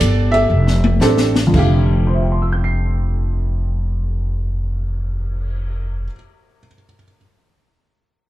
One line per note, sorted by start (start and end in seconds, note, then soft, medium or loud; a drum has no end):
0.00 0.49 G1 medium
0.00 0.32 G4 medium
0.00 0.32 A4 medium
0.00 0.36 D5 loud
0.00 kick soft
0.00 hi-hat pedal medium
0.00 ride medium
0.32 1.00 G4 medium
0.32 1.00 A4 medium
0.32 1.31 E5 loud
0.32 ride soft
0.50 0.99 F1 medium
0.67 snare soft
0.84 high tom medium
1.00 1.51 A1 medium
1.00 1.33 C4 medium
1.00 1.33 D4 medium
1.00 1.33 G4 medium
1.00 1.33 A4 medium
1.00 snare medium
1.00 hi-hat pedal soft
1.17 snare medium
1.36 snare medium
1.47 6.02 F2 medium
1.47 6.06 D3 medium
1.54 6.05 F1 medium
1.54 6.10 A3 medium
1.54 6.07 F5 medium
1.54 kick medium
1.54 crash medium
1.59 6.14 G4 medium
1.90 cymbal swell soft
2.07 6.59 C5 soft
2.14 6.66 E5 soft
2.23 6.74 G5 soft
2.32 6.83 C6 soft
2.42 6.93 E6 soft
2.52 7.04 G6 soft
2.64 7.15 C7 soft